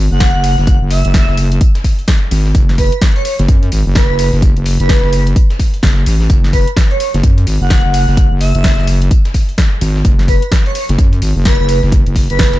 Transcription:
0.11 wobble bass F#1, digital synth lead F#5
0.20 kick, snare, closed hi-hat, tambourine
0.35 wobble bass F#1
0.44 open hi-hat, tambourine
0.58 wobble bass F#1, snare
0.67 kick, closed hi-hat, tambourine
0.82 wobble bass F#1
0.91 digital synth lead E5, open hi-hat
1.05 wobble bass F#1, closed hi-hat
1.14 kick, snare, closed hi-hat, tambourine
1.28 wobble bass F#1, snare
1.38 open hi-hat, tambourine
1.52 closed hi-hat
1.61 kick, closed hi-hat, tambourine
1.75 snare, closed hi-hat
1.84 kick, open hi-hat, tambourine
1.99 closed hi-hat
2.08 kick, snare, closed hi-hat, tambourine
2.31 wobble bass G#1, open hi-hat, tambourine
2.45 snare
2.55 wobble bass F#1, kick, closed hi-hat, tambourine
2.69 snare
2.78 digital synth lead B4, kick, open hi-hat, tambourine
2.92 closed hi-hat
3.02 kick, snare, closed hi-hat, tambourine
3.16 digital synth lead C#5, closed hi-hat
3.25 digital synth lead C#5, open hi-hat, tambourine
3.39 wobble bass F#1, snare, closed hi-hat
3.48 wobble bass F#2, kick, closed hi-hat, tambourine
3.63 closed hi-hat
3.72 wobble bass G#1, open hi-hat, tambourine
3.86 wobble bass F#1
3.95 digital synth lead B4, kick, snare, closed hi-hat, tambourine
4.09 wobble bass F#1, digital synth lead B4
4.19 digital synth lead B4, open hi-hat, tambourine
4.33 wobble bass F#1, snare
4.42 kick, closed hi-hat, tambourine
4.57 wobble bass F#1, closed hi-hat
4.66 open hi-hat
4.80 wobble bass F#1, digital synth lead B4, closed hi-hat
4.89 kick, snare, closed hi-hat, tambourine
5.03 wobble bass F#1, snare
5.12 open hi-hat, tambourine
5.27 closed hi-hat
5.36 kick, closed hi-hat, tambourine
5.50 snare, closed hi-hat
5.59 kick, open hi-hat, tambourine
5.74 closed hi-hat
5.83 wobble bass F#1, kick, snare, closed hi-hat, tambourine
6.06 wobble bass A1, open hi-hat, tambourine
6.21 snare
6.30 wobble bass F#1, kick, closed hi-hat, tambourine
6.44 snare
6.53 digital synth lead B4, kick, open hi-hat, tambourine
6.67 closed hi-hat
6.77 kick, snare, closed hi-hat, tambourine
6.91 digital synth lead C#5, closed hi-hat
7.00 digital synth lead C#5, open hi-hat, tambourine
7.14 wobble bass F#1, snare, closed hi-hat
7.23 wobble bass F#2, kick, closed hi-hat, tambourine
7.38 closed hi-hat
7.47 wobble bass G#1, open hi-hat, tambourine
7.61 wobble bass F#1, digital synth lead F#5
7.70 kick, snare, closed hi-hat, tambourine
7.85 wobble bass F#1
7.94 open hi-hat, tambourine
8.08 wobble bass F#1, snare
8.17 kick, closed hi-hat, tambourine
8.31 wobble bass F#1
8.41 digital synth lead E5, open hi-hat
8.55 wobble bass F#1, closed hi-hat
8.64 kick, snare, closed hi-hat, tambourine
8.78 wobble bass F#1, snare
8.87 open hi-hat, tambourine
9.02 closed hi-hat
9.11 kick, closed hi-hat, tambourine
9.25 snare, closed hi-hat
9.34 kick, open hi-hat, tambourine
9.49 closed hi-hat
9.58 kick, snare, closed hi-hat, tambourine
9.81 wobble bass G#1, open hi-hat, tambourine
9.96 snare
10.05 wobble bass F#1, kick, closed hi-hat, tambourine
10.19 snare
10.28 digital synth lead B4, kick, open hi-hat, tambourine
10.42 closed hi-hat
10.52 kick, snare, closed hi-hat, tambourine
10.66 digital synth lead C#5, closed hi-hat
10.75 digital synth lead C#5, open hi-hat, tambourine
10.89 wobble bass F#1, snare, closed hi-hat
10.98 wobble bass F#2, kick, closed hi-hat, tambourine
11.13 closed hi-hat
11.22 wobble bass G#1, open hi-hat, tambourine
11.36 wobble bass F#1
11.45 digital synth lead B4, kick, snare, closed hi-hat, tambourine
11.60 wobble bass F#1, digital synth lead B4
11.69 digital synth lead B4, open hi-hat, tambourine
11.83 wobble bass F#1, snare
11.92 kick, closed hi-hat, tambourine
12.07 wobble bass F#1, closed hi-hat
12.16 kick, open hi-hat
12.30 wobble bass F#1, digital synth lead B4, closed hi-hat
12.39 kick, snare, closed hi-hat, tambourine
12.53 wobble bass F#1, snare, closed hi-hat

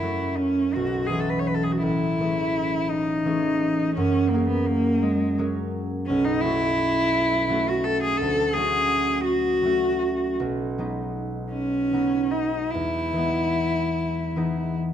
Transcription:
Already playing: harp F#2 E4, cello E4
0.02 harp F#3 A3 C#4 F#4
0.37 cello C#4
0.74 harp B1, cello F#4
1.06 harp E3, cello G#4
1.11 harp A3 C#4 F#4
1.20 cello A4
1.29 cello B4
1.39 cello C#5
1.47 cello B4
1.54 cello A4
1.63 cello G#4
1.72 cello F#4
1.82 harp A1, cello E4
2.20 harp E3 A3 C#4 G#4
2.90 cello D#4
3.25 harp E3 A3 C#4 G#4
3.95 harp F#2, cello C#4
4.29 harp F#3, cello A#3
4.34 harp A#3 C#4 G#4
4.48 cello B3
4.66 cello A#3
5.02 cello G#3
5.38 harp F#3 A#3 C#4 G#4
6.06 harp B1, cello C#4
6.24 cello D#4
6.41 harp F#3, cello E4
6.45 harp A3 C#4 F#4
7.49 harp F#3 A3 C#4 F#4
7.68 cello F#4
7.84 cello A4
8.03 cello G#4
8.17 harp D2, cello A4
8.53 harp F#3 A3, cello G#4
8.58 harp C#4 F#4
9.24 cello F#4
9.62 harp F#3 A3 F#4
9.66 harp C#4
10.40 harp B1
10.78 harp F#3 G#3 B3 D#4
11.52 cello C#4
11.93 harp F#3 G#3 B3 D#4
12.30 cello D#4
12.70 cello E4
12.74 harp E2
13.13 harp E3 G#3 D#4
13.18 harp B3
14.36 harp E3 G#3 B3 D#4

